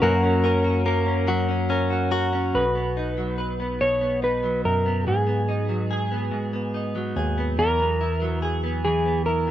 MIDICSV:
0, 0, Header, 1, 5, 480
1, 0, Start_track
1, 0, Key_signature, 5, "major"
1, 0, Tempo, 840336
1, 14, Time_signature, 6, 3, 24, 8
1, 5432, End_track
2, 0, Start_track
2, 0, Title_t, "Electric slide guitar"
2, 0, Program_c, 0, 29
2, 10, Note_on_c, 0, 70, 78
2, 946, Note_off_c, 0, 70, 0
2, 1457, Note_on_c, 0, 71, 82
2, 1916, Note_off_c, 0, 71, 0
2, 2176, Note_on_c, 0, 73, 80
2, 2401, Note_off_c, 0, 73, 0
2, 2421, Note_on_c, 0, 71, 66
2, 2655, Note_off_c, 0, 71, 0
2, 2657, Note_on_c, 0, 70, 68
2, 2898, Note_off_c, 0, 70, 0
2, 2900, Note_on_c, 0, 68, 62
2, 4073, Note_off_c, 0, 68, 0
2, 4335, Note_on_c, 0, 70, 84
2, 4791, Note_off_c, 0, 70, 0
2, 5053, Note_on_c, 0, 68, 74
2, 5287, Note_off_c, 0, 68, 0
2, 5289, Note_on_c, 0, 70, 70
2, 5432, Note_off_c, 0, 70, 0
2, 5432, End_track
3, 0, Start_track
3, 0, Title_t, "Clean electric guitar"
3, 0, Program_c, 1, 27
3, 0, Note_on_c, 1, 61, 71
3, 14, Note_on_c, 1, 58, 85
3, 18, Note_on_c, 1, 66, 76
3, 254, Note_off_c, 1, 61, 0
3, 256, Note_on_c, 1, 61, 63
3, 484, Note_off_c, 1, 58, 0
3, 491, Note_on_c, 1, 58, 62
3, 730, Note_off_c, 1, 66, 0
3, 733, Note_on_c, 1, 66, 73
3, 963, Note_off_c, 1, 61, 0
3, 970, Note_on_c, 1, 61, 60
3, 1207, Note_off_c, 1, 66, 0
3, 1210, Note_on_c, 1, 66, 70
3, 1502, Note_off_c, 1, 58, 0
3, 1502, Note_off_c, 1, 61, 0
3, 1787, Note_off_c, 1, 66, 0
3, 5432, End_track
4, 0, Start_track
4, 0, Title_t, "Clean electric guitar"
4, 0, Program_c, 2, 27
4, 0, Note_on_c, 2, 47, 81
4, 0, Note_on_c, 2, 61, 66
4, 0, Note_on_c, 2, 63, 68
4, 0, Note_on_c, 2, 71, 70
4, 15, Note_on_c, 2, 54, 76
4, 58, Note_off_c, 2, 71, 0
4, 59, Note_off_c, 2, 63, 0
4, 61, Note_off_c, 2, 47, 0
4, 129, Note_off_c, 2, 61, 0
4, 131, Note_on_c, 2, 61, 59
4, 249, Note_on_c, 2, 70, 73
4, 367, Note_on_c, 2, 66, 53
4, 484, Note_off_c, 2, 70, 0
4, 490, Note_on_c, 2, 70, 65
4, 600, Note_off_c, 2, 61, 0
4, 607, Note_on_c, 2, 61, 61
4, 725, Note_off_c, 2, 54, 0
4, 728, Note_on_c, 2, 54, 83
4, 841, Note_off_c, 2, 61, 0
4, 848, Note_on_c, 2, 61, 54
4, 962, Note_off_c, 2, 70, 0
4, 969, Note_on_c, 2, 70, 60
4, 1085, Note_off_c, 2, 66, 0
4, 1087, Note_on_c, 2, 66, 59
4, 1200, Note_off_c, 2, 70, 0
4, 1207, Note_on_c, 2, 70, 60
4, 1322, Note_off_c, 2, 61, 0
4, 1329, Note_on_c, 2, 61, 60
4, 1453, Note_on_c, 2, 47, 66
4, 1500, Note_off_c, 2, 70, 0
4, 1501, Note_off_c, 2, 61, 0
4, 1572, Note_on_c, 2, 59, 45
4, 1694, Note_off_c, 2, 66, 0
4, 1696, Note_on_c, 2, 63, 50
4, 1812, Note_off_c, 2, 54, 0
4, 1815, Note_on_c, 2, 54, 45
4, 1931, Note_on_c, 2, 71, 46
4, 2053, Note_off_c, 2, 59, 0
4, 2055, Note_on_c, 2, 59, 51
4, 2169, Note_off_c, 2, 47, 0
4, 2176, Note_on_c, 2, 47, 69
4, 2289, Note_off_c, 2, 59, 0
4, 2292, Note_on_c, 2, 59, 46
4, 2410, Note_off_c, 2, 63, 0
4, 2412, Note_on_c, 2, 63, 44
4, 2530, Note_off_c, 2, 54, 0
4, 2533, Note_on_c, 2, 54, 54
4, 2773, Note_off_c, 2, 59, 0
4, 2775, Note_on_c, 2, 59, 47
4, 2892, Note_off_c, 2, 47, 0
4, 2894, Note_on_c, 2, 44, 64
4, 3006, Note_off_c, 2, 59, 0
4, 3009, Note_on_c, 2, 59, 46
4, 3131, Note_off_c, 2, 63, 0
4, 3134, Note_on_c, 2, 63, 53
4, 3249, Note_off_c, 2, 54, 0
4, 3251, Note_on_c, 2, 54, 47
4, 3371, Note_off_c, 2, 71, 0
4, 3374, Note_on_c, 2, 68, 56
4, 3491, Note_off_c, 2, 59, 0
4, 3493, Note_on_c, 2, 59, 48
4, 3600, Note_off_c, 2, 44, 0
4, 3607, Note_on_c, 2, 44, 66
4, 3730, Note_off_c, 2, 59, 0
4, 3732, Note_on_c, 2, 59, 51
4, 3845, Note_off_c, 2, 63, 0
4, 3852, Note_on_c, 2, 63, 46
4, 3970, Note_off_c, 2, 54, 0
4, 3972, Note_on_c, 2, 54, 56
4, 4090, Note_off_c, 2, 68, 0
4, 4093, Note_on_c, 2, 68, 52
4, 4211, Note_off_c, 2, 59, 0
4, 4214, Note_on_c, 2, 59, 50
4, 4334, Note_on_c, 2, 52, 67
4, 4377, Note_off_c, 2, 44, 0
4, 4380, Note_off_c, 2, 63, 0
4, 4452, Note_off_c, 2, 59, 0
4, 4454, Note_on_c, 2, 59, 46
4, 4574, Note_on_c, 2, 64, 52
4, 4591, Note_off_c, 2, 54, 0
4, 4694, Note_on_c, 2, 54, 54
4, 4711, Note_off_c, 2, 68, 0
4, 4811, Note_on_c, 2, 68, 53
4, 4925, Note_off_c, 2, 59, 0
4, 4932, Note_on_c, 2, 59, 50
4, 5047, Note_off_c, 2, 52, 0
4, 5054, Note_on_c, 2, 52, 75
4, 5166, Note_off_c, 2, 59, 0
4, 5173, Note_on_c, 2, 59, 50
4, 5282, Note_off_c, 2, 64, 0
4, 5289, Note_on_c, 2, 64, 46
4, 5410, Note_off_c, 2, 54, 0
4, 5412, Note_on_c, 2, 54, 55
4, 5432, Note_off_c, 2, 52, 0
4, 5432, Note_off_c, 2, 54, 0
4, 5432, Note_off_c, 2, 59, 0
4, 5432, Note_off_c, 2, 64, 0
4, 5432, Note_off_c, 2, 68, 0
4, 5432, End_track
5, 0, Start_track
5, 0, Title_t, "Tine electric piano"
5, 0, Program_c, 3, 4
5, 14, Note_on_c, 3, 42, 103
5, 1431, Note_off_c, 3, 42, 0
5, 1454, Note_on_c, 3, 35, 76
5, 2636, Note_off_c, 3, 35, 0
5, 2657, Note_on_c, 3, 42, 68
5, 2883, Note_off_c, 3, 42, 0
5, 2896, Note_on_c, 3, 44, 72
5, 4071, Note_off_c, 3, 44, 0
5, 4091, Note_on_c, 3, 39, 78
5, 4318, Note_off_c, 3, 39, 0
5, 4333, Note_on_c, 3, 40, 89
5, 5432, Note_off_c, 3, 40, 0
5, 5432, End_track
0, 0, End_of_file